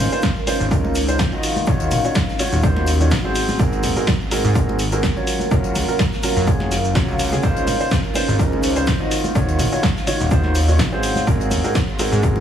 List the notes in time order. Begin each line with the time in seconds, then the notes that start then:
Already playing: D#4 A#4 F5
0.11 C#3 C#4 D#4 F4 C5, tambourine, cabasa
0.22 kick, snare, tambourine, cabasa, shaker
0.30 C6
0.36 tambourine
0.47 C#3 C#4 D#4 F4 C5, open hi-hat, tambourine, high conga, cabasa, shaker
0.51 F5
0.59 G#1, tambourine, cabasa
0.71 C#2 C#3 C#4 D#4 F4 A#4, kick, tambourine, cabasa, shaker
0.85 tambourine, high conga
0.94 open hi-hat, tambourine, cabasa, shaker
1.08 C#3 C#4 D#4 F4 C5, closed hi-hat, tambourine, cabasa
1.19 kick, snare, tambourine, high conga, cabasa, shaker
1.32 D#3 D#4 F4 F#4 D#5, tambourine
1.43 C#4, open hi-hat, tambourine, cabasa, shaker
1.56 tambourine, high conga, cabasa
1.66 D#2 D#3 D#4 F4 F#4 C#5, kick, tambourine, cabasa, shaker
1.80 closed hi-hat, tambourine
1.91 A#1, open hi-hat, tambourine, high conga, cabasa, shaker
1.99 F#4
2.04 D#3 D#4 F4 F#4 C#5, tambourine, cabasa
2.15 kick, snare, tambourine, cabasa, shaker
2.28 snare, tambourine
2.39 D#3 D#4 F4 F#4 C#5, open hi-hat, tambourine, high conga, cabasa, shaker
2.52 D#1, tambourine, cabasa
2.63 D#2 D#3 D#4 F4 F#4 C5, kick, tambourine, cabasa, shaker
2.76 snare, tambourine, high conga
2.86 open hi-hat, tambourine, cabasa, shaker
3.01 D#3 D#4 F4 F#4 C#5, tambourine, cabasa
3.11 kick, snare, tambourine, high conga, cabasa, shaker
3.24 G#2 C4 F#4 G#4 C5, tambourine
3.35 open hi-hat, tambourine, cabasa, shaker
3.48 snare, tambourine, high conga, cabasa
3.59 G#1 G#2 C4 F#4 G#4 A#4, kick, tambourine, cabasa, shaker
3.72 A#4, closed hi-hat, tambourine
3.83 D#1, open hi-hat, tambourine, high conga, cabasa, shaker
3.96 G#2 C4 F#4 G#4 A#4, tambourine, cabasa
4.07 kick, snare, tambourine, cabasa, shaker
4.21 tambourine
4.31 G#2 C4 F#4 G#4 A#4, open hi-hat, tambourine, high conga, cabasa, shaker
4.44 G#2, tambourine, cabasa
4.55 G#1 G#2 C4 F#4 G#4 A#4, kick, tambourine, cabasa, shaker
4.68 tambourine, high conga
4.79 open hi-hat, tambourine, cabasa, shaker
4.92 G#2 C4 F#4 G#4 A#4, closed hi-hat, tambourine, cabasa
5.03 kick, snare, tambourine, high conga, cabasa, shaker
5.16 F#3 C#4 F4 F#4 C#5, tambourine
5.27 F5, open hi-hat, tambourine, cabasa, shaker
5.39 tambourine, high conga, cabasa
5.51 F#1 F#3 C#4 F4 F#4 A#4, kick, tambourine, cabasa, shaker
5.64 closed hi-hat, tambourine
5.75 C#2, open hi-hat, tambourine, high conga, cabasa, shaker
5.88 F#3 C#4 F4 F#4 A#4, tambourine, cabasa
5.99 kick, snare, tambourine, cabasa, shaker
6.12 snare, tambourine
6.23 F#3 C#4 F4 F#4 A#4, open hi-hat, tambourine, high conga, cabasa, shaker
6.36 F#2, tambourine, cabasa
6.47 F#1 F#3 C#4 F4 F#4 G#4, kick, tambourine, cabasa, shaker
6.60 snare, tambourine, high conga
6.71 snare, open hi-hat, tambourine, cabasa, shaker
6.85 tambourine, cabasa
6.95 C#2 F#3 C#4 F4 F#4 C#5, kick, snare, tambourine, high conga, cabasa, shaker
7.08 C#2, tambourine
7.19 C#2, open hi-hat, tambourine, cabasa, shaker
7.32 C#3 C#4 F4 F#4 G#4, snare, tambourine, high conga, cabasa
7.43 C#2 C#3 C#4 D#4 F4 C5, kick, tambourine, cabasa, shaker
7.56 closed hi-hat, tambourine
7.62 C5
7.67 G#1, open hi-hat, tambourine, high conga, cabasa, shaker
7.80 C#3 C#4 D#4 F4 C5, tambourine, cabasa
7.91 kick, snare, tambourine, cabasa, shaker
8.04 tambourine
8.14 C#3 C#4 D#4 F4 C5, open hi-hat, tambourine, high conga, cabasa, shaker
8.28 G#1, tambourine, cabasa
8.39 C#2 C#3 C#4 D#4 F4 A#4, kick, tambourine, cabasa, shaker
8.52 tambourine, high conga
8.63 open hi-hat, tambourine, cabasa, shaker
8.76 C#3 C#4 D#4 F4 C5, closed hi-hat, tambourine, cabasa
8.87 kick, snare, tambourine, high conga, cabasa, shaker
9.00 D#3 D#4 F4 F#4 D#5, tambourine
9.11 F5, open hi-hat, tambourine, cabasa, shaker
9.24 tambourine, high conga, cabasa
9.35 D#2 D#3 D#4 F4 F#4 C#5, kick, tambourine, cabasa, shaker
9.48 closed hi-hat, tambourine
9.55 F#5, high conga
9.59 A#1, open hi-hat, tambourine, cabasa, shaker
9.72 D#3 D#4 F4 F#4 C#5, tambourine, cabasa
9.83 kick, snare, tambourine, cabasa, shaker
9.96 snare, tambourine
10.07 D#3 D#4 F4 F#4 C#5, open hi-hat, tambourine, high conga, cabasa, shaker
10.20 D#1, tambourine, cabasa
10.31 D#2 D#3 D#4 F4 F#4 C5, kick, tambourine, cabasa, shaker
10.44 snare, tambourine, high conga
10.55 open hi-hat, tambourine, cabasa, shaker
10.68 D#3 D#4 F4 F#4 C#5, tambourine, cabasa
10.79 kick, snare, tambourine, high conga, cabasa, shaker
10.92 G#2 C4 F#4 G#4 C5, tambourine
11.03 G#4, open hi-hat, tambourine, cabasa, shaker
11.15 snare, tambourine, high conga, cabasa
11.22 C6
11.27 G#1 G#2 C4 F#4 G#4 A#4, kick, tambourine, cabasa, shaker
11.40 closed hi-hat, tambourine
11.51 D#1, open hi-hat, tambourine, high conga, cabasa, shaker
11.64 G#2 C4 F#4 G#4 A#4, tambourine, cabasa
11.73 A#5, kick, snare, tambourine, cabasa, shaker
11.88 tambourine
11.99 G#2 C4 F#4 G#4 A#4, open hi-hat, tambourine, high conga, cabasa, shaker
12.11 G#2, tambourine, cabasa
12.23 G#1 G#2 C4 F#4 G#4 A#4, kick, tambourine, cabasa, shaker
12.36 tambourine, high conga